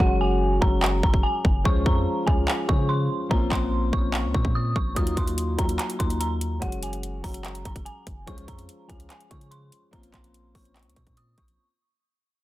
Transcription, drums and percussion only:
0.62 kick loud
0.83 clap loud
1.03 kick loud
1.14 kick medium
1.45 kick medium
1.65 kick loud
1.86 kick loud
2.27 kick medium
2.48 clap loud
2.69 kick loud
3.31 kick loud
3.52 kick loud
3.52 clap loud
3.93 kick loud
4.14 clap loud
4.34 kick loud
4.45 kick medium
4.76 kick medium
4.96 kick loud
4.96 closed hi-hat medium
5.07 closed hi-hat medium
5.17 kick loud
5.17 closed hi-hat medium
5.28 closed hi-hat medium
5.38 closed hi-hat medium
5.59 kick loud
5.59 closed hi-hat medium
5.69 closed hi-hat medium
5.79 clap loud
5.79 closed hi-hat medium
5.90 closed hi-hat medium
6.00 kick loud
6.00 closed hi-hat medium
6.10 closed hi-hat medium
6.21 closed hi-hat medium
6.41 closed hi-hat medium
6.62 kick loud
6.62 closed hi-hat medium
6.72 closed hi-hat medium
6.83 closed hi-hat medium
6.93 closed hi-hat medium
7.03 closed hi-hat medium
7.24 kick medium
7.24 open hi-hat medium
7.34 closed hi-hat medium
7.45 clap loud
7.45 closed hi-hat medium
7.55 closed hi-hat medium
7.65 kick loud
7.65 closed hi-hat medium
7.76 kick loud
7.76 closed hi-hat medium
7.86 closed hi-hat medium
8.07 kick medium
8.07 closed hi-hat medium
8.27 kick loud
8.27 closed hi-hat medium
8.38 closed hi-hat medium
8.48 kick loud
8.48 closed hi-hat medium
8.59 closed hi-hat medium
8.69 closed hi-hat medium
8.90 kick loud
8.90 closed hi-hat medium
9.00 closed hi-hat medium
9.10 clap loud
9.10 closed hi-hat medium
9.21 closed hi-hat medium
9.31 kick loud
9.31 closed hi-hat medium
9.41 closed hi-hat medium
9.52 closed hi-hat medium
9.72 closed hi-hat medium
9.93 kick loud
9.93 closed hi-hat medium
10.03 closed hi-hat medium
10.14 kick medium
10.14 clap loud
10.14 closed hi-hat medium
10.24 closed hi-hat medium
10.34 closed hi-hat medium
10.55 kick medium
10.55 open hi-hat medium
10.65 closed hi-hat medium
10.76 clap loud
10.76 closed hi-hat soft
10.83 closed hi-hat medium
10.90 closed hi-hat medium
10.96 kick loud
10.96 closed hi-hat medium
11.07 kick medium
11.07 closed hi-hat medium
11.17 closed hi-hat medium
11.38 kick loud
11.38 closed hi-hat medium
11.48 closed hi-hat medium

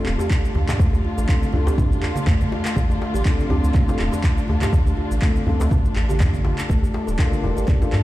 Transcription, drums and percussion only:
0.06 clap medium
0.06 djembe tone medium
0.19 djembe tone medium
0.19 shaker medium
0.30 kick loud
0.30 clap loud
0.30 shaker medium
0.45 shaker soft
0.55 high conga medium
0.55 djembe tone medium
0.69 clap loud
0.69 mid tom medium
0.69 djembe slap loud
0.69 shaker medium
0.79 kick loud
0.79 high conga medium
0.79 djembe bass loud
0.79 shaker medium
0.93 djembe tone medium
0.93 shaker soft
1.18 shaker medium
1.29 kick loud
1.29 clap loud
1.29 shaker medium
1.42 high conga medium
1.42 shaker soft
1.53 djembe tone medium
1.53 low conga medium
1.67 djembe slap medium
1.67 shaker medium
1.78 kick loud
1.78 mid tom medium
1.78 djembe tone loud
1.78 high conga loud
1.78 shaker medium
1.92 shaker soft
2.02 clap medium
2.02 djembe tone medium
2.15 high conga loud
2.15 shaker medium
2.26 kick loud
2.26 clap loud
2.26 mid tom medium
2.26 djembe slap medium
2.26 djembe bass medium
2.26 shaker medium
2.41 high conga loud
2.41 shaker soft
2.52 djembe slap medium
2.52 high conga medium
2.65 clap loud
2.65 shaker medium
2.76 kick loud
2.76 high conga medium
2.76 djembe bass medium
2.76 shaker medium
2.90 djembe tone medium
2.90 shaker soft
3.02 djembe slap medium
3.15 shaker medium
3.25 kick loud
3.25 clap loud
3.25 shaker medium
3.39 high conga medium
3.39 shaker soft
3.50 djembe tone medium
3.50 low conga medium
3.64 shaker medium
3.74 kick loud
3.74 clap medium
3.74 mid tom medium
3.74 high conga loud
3.74 low conga medium
3.74 shaker medium
3.89 djembe slap medium
3.89 shaker soft
3.99 clap medium
3.99 djembe tone medium
4.13 djembe tone medium
4.13 shaker medium
4.24 kick loud
4.24 clap loud
4.24 shaker medium
4.38 shaker soft
4.48 high conga medium
4.48 djembe tone loud
4.62 clap medium
4.62 mid tom medium
4.62 djembe slap medium
4.62 shaker medium
4.73 kick loud
4.73 high conga medium
4.73 djembe bass medium
4.73 shaker medium
4.87 djembe tone medium
4.87 shaker soft
5.11 shaker medium
5.22 kick loud
5.22 clap loud
5.22 shaker medium
5.36 high conga medium
5.36 shaker soft
5.47 djembe tone medium
5.47 low conga medium
5.61 djembe slap medium
5.61 shaker medium
5.71 kick loud
5.71 mid tom medium
5.71 high conga medium
5.71 djembe tone medium
5.71 shaker medium
5.85 shaker soft
5.96 clap medium
5.96 djembe tone medium
6.10 high conga loud
6.10 shaker medium
6.20 kick loud
6.20 clap loud
6.20 mid tom medium
6.20 djembe slap medium
6.20 djembe bass medium
6.20 shaker medium
6.34 high conga loud
6.34 shaker soft
6.44 djembe slap medium
6.44 high conga medium
6.58 clap medium
6.58 shaker medium
6.69 kick loud
6.69 high conga medium
6.69 djembe bass medium
6.69 shaker medium
6.83 djembe tone medium
6.83 shaker soft
6.94 djembe slap medium
7.08 shaker medium
7.19 kick loud
7.19 clap loud
7.19 shaker medium
7.32 high conga medium
7.32 shaker soft
7.43 djembe tone medium
7.43 low conga medium
7.58 shaker medium
7.67 kick loud
7.67 clap medium
7.67 mid tom medium
7.67 high conga loud
7.67 low conga medium
7.67 shaker medium
7.82 djembe slap medium
7.82 shaker soft
7.93 clap medium
7.93 djembe tone medium

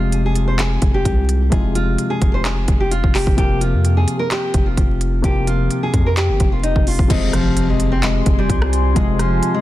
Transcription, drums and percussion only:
0.12 closed hi-hat medium
0.35 closed hi-hat medium
0.59 clap loud
0.59 closed hi-hat medium
0.82 kick loud
0.82 closed hi-hat medium
1.05 kick loud
1.05 closed hi-hat medium
1.29 closed hi-hat medium
1.52 kick loud
1.52 closed hi-hat medium
1.75 closed hi-hat medium
1.98 closed hi-hat medium
2.22 kick loud
2.22 closed hi-hat medium
2.45 clap loud
2.45 closed hi-hat medium
2.68 kick loud
2.68 closed hi-hat medium
2.92 closed hi-hat medium
3.04 kick medium
3.15 clap medium
3.15 open hi-hat medium
3.27 kick loud
3.38 kick loud
3.38 closed hi-hat medium
3.61 closed hi-hat medium
3.85 closed hi-hat medium
4.08 closed hi-hat medium
4.31 clap loud
4.31 closed hi-hat medium
4.54 kick loud
4.54 closed hi-hat medium
4.77 kick medium
4.77 closed hi-hat medium
5.01 closed hi-hat medium
5.24 kick loud
5.24 closed hi-hat medium
5.47 closed hi-hat medium
5.71 closed hi-hat medium
5.94 kick loud
5.94 closed hi-hat medium
6.17 clap loud
6.17 closed hi-hat medium
6.40 kick loud
6.40 closed hi-hat medium
6.64 closed hi-hat medium
6.76 kick medium
6.87 open hi-hat medium
6.99 kick medium
7.10 kick loud
7.10 closed hi-hat medium
7.10 crash loud
7.33 cross-stick medium
7.33 closed hi-hat medium
7.57 closed hi-hat medium
7.80 closed hi-hat medium
8.03 clap loud
8.03 closed hi-hat medium
8.26 kick loud
8.26 closed hi-hat medium
8.50 kick medium
8.50 closed hi-hat medium
8.62 cross-stick loud
8.73 closed hi-hat medium
8.96 kick loud
8.96 closed hi-hat medium
9.19 cross-stick medium
9.19 closed hi-hat medium
9.43 closed hi-hat medium

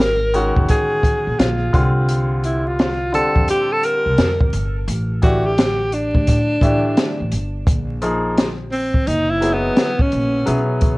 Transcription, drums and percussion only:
0.00 snare loud
0.34 closed hi-hat medium
0.56 kick medium
0.69 kick medium
0.69 closed hi-hat loud
1.03 kick medium
1.03 closed hi-hat medium
1.40 snare loud
1.40 closed hi-hat loud
1.74 kick loud
1.74 closed hi-hat medium
2.09 closed hi-hat loud
2.44 closed hi-hat medium
2.79 snare loud
2.79 closed hi-hat loud
3.14 closed hi-hat medium
3.36 kick medium
3.48 closed hi-hat loud
3.83 closed hi-hat medium
4.18 snare loud
4.18 closed hi-hat medium
4.41 kick medium
4.53 closed hi-hat medium
4.88 closed hi-hat medium
5.22 kick medium
5.22 closed hi-hat medium
5.58 snare loud
5.58 closed hi-hat loud
5.92 closed hi-hat medium
6.15 kick medium
6.27 kick medium
6.27 closed hi-hat loud
6.61 kick medium
6.61 closed hi-hat medium
6.97 snare loud
6.97 closed hi-hat medium
7.32 closed hi-hat medium
7.67 kick loud
7.67 closed hi-hat loud
8.02 closed hi-hat medium
8.38 snare loud
8.38 closed hi-hat medium
8.72 open hi-hat soft
8.94 kick medium
9.07 closed hi-hat loud
9.42 closed hi-hat medium
9.77 snare loud
9.77 closed hi-hat medium
9.99 kick medium
10.12 closed hi-hat medium
10.47 closed hi-hat medium
10.81 kick medium
10.81 closed hi-hat medium

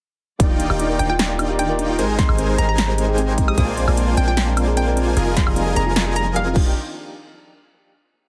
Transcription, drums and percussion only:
0.40 kick loud
0.40 closed hi-hat medium
0.60 closed hi-hat medium
0.70 high woodblock medium
0.79 closed hi-hat medium
0.99 closed hi-hat medium
1.19 snare loud
1.19 closed hi-hat medium
1.39 closed hi-hat medium
1.39 high woodblock medium
1.59 closed hi-hat medium
1.79 closed hi-hat medium
1.99 closed hi-hat medium
2.19 kick loud
2.19 snare medium
2.19 closed hi-hat medium
2.29 high woodblock medium
2.38 closed hi-hat medium
2.58 closed hi-hat medium
2.78 snare loud
2.78 closed hi-hat medium
2.98 closed hi-hat medium
3.18 closed hi-hat medium
3.38 kick medium
3.38 closed hi-hat medium
3.48 high woodblock medium
3.58 kick loud
3.58 closed hi-hat medium
3.78 closed hi-hat medium
3.88 high woodblock medium
3.97 closed hi-hat medium
4.17 closed hi-hat medium
4.37 snare loud
4.37 closed hi-hat medium
4.57 closed hi-hat medium
4.57 high woodblock medium
4.77 closed hi-hat medium
4.97 closed hi-hat medium
5.17 closed hi-hat medium
5.37 kick loud
5.37 snare medium
5.37 closed hi-hat medium
5.47 high woodblock medium
5.56 closed hi-hat medium
5.76 closed hi-hat medium
5.96 snare loud
5.96 closed hi-hat medium
6.16 closed hi-hat medium
6.36 closed hi-hat medium
6.56 kick loud
6.56 crash medium

